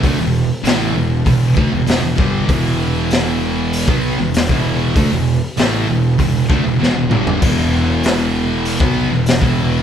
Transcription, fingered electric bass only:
\new Staff \with { instrumentName = "Fingered electric bass" } { \clef bass \time 4/4 \key e \minor \tempo 4 = 98 d,16 e,,8 r16 a,,8 e,,8 e,,8 d,16 e,,16 e,,16 e,,16 g,,8 | e,,2~ e,,16 b,,8 e,,8 e,,8. | d,16 e,,8 r16 a,,8 e,,8 e,,8 d,16 e,,16 e,,16 e,,16 g,,8 | e,,2~ e,,16 b,,8 e,,8 e,,8. | }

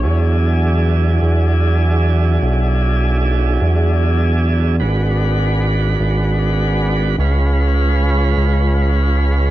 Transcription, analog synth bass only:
\new Staff \with { instrumentName = "Analog synth bass" } { \clef bass \time 12/8 \key e \mixolydian \tempo 4. = 50 e,4. e,4. b,,4. e,4. | gis,,4. gis,,4. cis,4. cis,4. | }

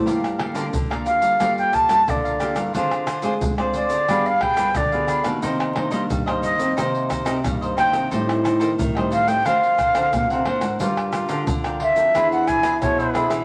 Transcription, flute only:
\new Staff \with { instrumentName = "Flute" } { \time 4/4 \key g \minor \tempo 4 = 89 r4. f''8. g''16 a''8 d''8. r16 | r4. d''8. f''16 g''8 d''8. r16 | r4. ees''8 r4. g''8 | r4. f''16 g''16 eis''4. r8 |
r4. e''8. fis''16 gis''8 cis''8. r16 | }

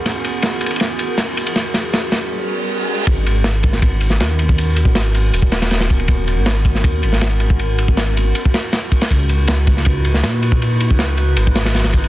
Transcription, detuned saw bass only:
\new Staff \with { instrumentName = "Detuned saw bass" } { \clef bass \time 4/4 \key gis \minor \tempo 4 = 159 r1 | r1 | gis,,2. dis,4~ | dis,8. gis,,4~ gis,,16 dis,,2~ |
dis,,8. gis,,4~ gis,,16 dis,8 gis,,4.~ | gis,,8. gis,,4~ gis,,16 r2 | cis,2. ais,4~ | ais,8. cis,4~ cis,16 gis,,2 | }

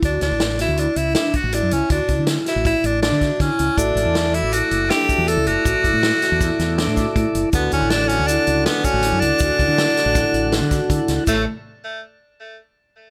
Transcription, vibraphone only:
\new Staff \with { instrumentName = "Vibraphone" } { \time 5/4 \key a \major \tempo 4 = 160 fis'8 e'4 fis'8 e'4 d'8 fis'8 e'8 e'8 | fis'8 e'4 fis'8 e'4 d'8 r8 e'8 e'8 | fis'8 e'4 fis'8 e'4 d'8 fis'8 e'8 e'8 | fis'8 e'4 r8 e'4 d'8 fis'8 e'8 e'8 |
fis'8 e'4 fis'8 e'4 d'8 fis'8 e'8 e'8 | fis'8 e'4 r8 e'4 d'8 fis'8 e'8 e'8 | a8 r1 r8 | }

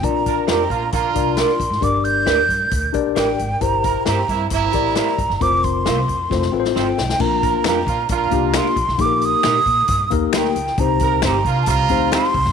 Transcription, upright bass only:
\new Staff \with { instrumentName = "Upright bass" } { \clef bass \time 4/4 \key bes \major \tempo 4 = 134 bes,,4 f,8 bes,8 bes,,8 c,8. r16 bes,,16 aes,,16 | g,,4 d,8 g,8 d,8 bes,,8 a,,8 aes,,8 | g,,4 g,8 g,8 g,,8 a,,8. r16 g,,16 ges,,16 | f,,4 c,8 f,8 f,,8 a,,8 g,,8 ces,8 |
bes,,4 f,8 bes,8 bes,,8 c,8. r16 bes,,16 ces,16 | bes,,4 bes,8 bes,8 g,8 ees,8 d,8 des,8 | c,4 g,,8 c8 c,8 d,8. r16 c,16 ges,,16 | }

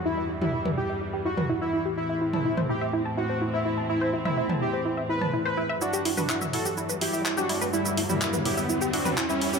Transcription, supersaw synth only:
\new Staff \with { instrumentName = "Supersaw synth" } { \time 4/4 \key e \minor \tempo 4 = 125 e'8 r16 e'8 r16 g'16 r8. fis'8 r16 e'8 r16 | e'8 r16 e'8 r16 g'16 r8. fis'8 r16 e'8 r16 | e'8 r16 e'8 r16 g'16 r8. b'8 r16 b'8 r16 | <d' fis'>8 r16 <d' fis'>8 r16 <fis' a'>16 r8. <e' g'>8 r16 <d' fis'>8 r16 |
<g e'>8 r16 <g e'>8 r16 <e' g'>16 r8. <d' fis'>8 r16 <g e'>8 r16 | }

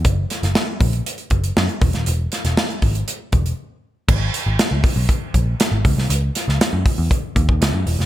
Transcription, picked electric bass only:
\new Staff \with { instrumentName = "Picked electric bass" } { \clef bass \time 4/4 \key gis \minor \tempo 4 = 119 fis,,8 r16 fis,,16 r8 ais,,8 r8 fis,,8 fis,16 r16 e,,16 dis,,16 | e,,8 r16 e,,16 r8 gis,,8 r8 e,,8 r4 | gis,,8 r16 gis,,16 r16 cis,16 r16 b,,16 r8 ais,,8 r16 gis,,16 cis,16 bis,,16 | cis,8 r16 cis,16 r16 fis,16 r16 e,16 r8 dis,8 cis,16 fis,16 e,,16 eis,,16 | }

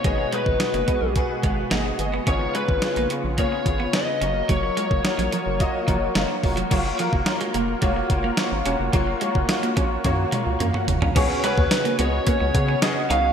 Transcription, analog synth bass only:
\new Staff \with { instrumentName = "Analog synth bass" } { \clef bass \time 4/4 \key ges \major \tempo 4 = 108 aes,,8 r16 aes,,16 r16 ges,,16 r16 ces,8 r16 aes,,8 aes,,8 g,,8 | aes,,8 r16 aes,,16 r16 bes,,16 r16 bes,,8 r16 aes,,8 r8 ges,,8 | ges,,8 r16 ges,,16 r16 bes,,16 r16 ges,,8 r16 ges,,8 ges,,16 r16 f,,8 | ges,,8 r16 ges,,16 r8 f,,8 f,,8 ges,,8 r16 aes,,16 fes,,16 f,,16 |
ges,,8 r16 ges,,16 r8 bes,,8 ges,8 r16 des,16 ges,16 r16 ges,,16 c,16 | des,16 r8 ees,16 r8 des,8 r16 des,16 des8 r8 c,8 | }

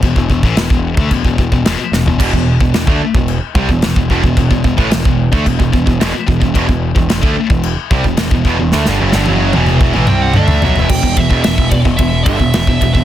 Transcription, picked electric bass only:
\new Staff \with { instrumentName = "Picked electric bass" } { \clef bass \time 4/4 \key e \minor \tempo 4 = 110 e,,16 e,,16 e,,16 a,,16 e,,16 e,,8 d,16 e,,16 e,,16 e,,16 e,,16 e,,16 r16 e,,16 e,,16 | e,,16 e,,8 e,,16 e,,16 d,16 r16 e,,8 r16 c,16 e,,16 e,,16 e,,16 e,,16 e,,16 | e,,16 r16 e,,16 a,,16 e,,16 e,,8 d,16 e,,16 e,,16 e,,16 e,,16 e,,16 r16 e,,16 e,,16 | e,,16 e,,8 e,,16 e,,16 d,16 r16 e,,8 r16 c,16 e,,16 e,,16 e,,16 e,,16 e,,16 |
d,16 g,,16 fis,,16 g,,16 fis,,8 e,,8. a,,16 c,8 d,8 b,,16 e,,16 | e,,16 e,,16 e,,16 e,,16 e,,16 e,,16 e,,16 e,,16 e,,8 g,,16 e,,16 e,,16 e,,16 e,,16 e,,16 | }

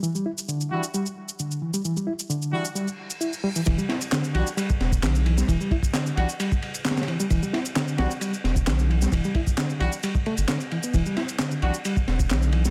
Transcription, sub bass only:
\new Staff \with { instrumentName = "Sub bass" } { \clef bass \time 4/4 \key e \minor \tempo 4 = 132 r1 | r1 | e,,16 r4 r16 b,,16 r8. e,,8 b,,8. r16 | e,,16 r4 r16 b,,16 r2 r16 |
e,,16 r4 r16 b,,16 r8. e,,8 b,,8. r16 | e,,16 r4 r16 b,,16 r4 g,,16 r4 | e,,16 r4 r16 b,,16 r8. e,,8 b,,8. r16 | }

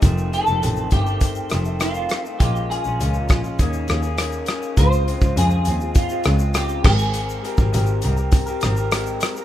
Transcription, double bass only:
\new Staff \with { instrumentName = "Double bass" } { \clef bass \time 4/4 \key aes \major \tempo 4 = 101 f,,8 r16 f,,16 a,,8 g,,8. r16 f,,4 r8 | bes,,8 r16 bes,,16 des,8 bes,,8 ees,8 ees,4 r8 | des,8 r16 des,16 f,8 ees,8. r16 des,4 aes,,8~ | aes,,8 r16 aes,,16 aes,,8 c,8. r16 aes,,4 r8 | }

